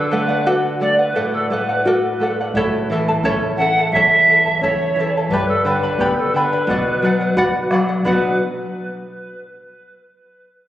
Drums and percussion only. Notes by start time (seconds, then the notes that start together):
2.54 bombo low
3.06 bombo low
3.23 bombo low
3.93 bombo low
4.45 bombo low
4.61 bombo low
5.30 bombo low
5.81 bombo low
5.98 bombo low
6.68 bombo low
7.36 bombo low
7.71 bombo rim
8.04 bombo low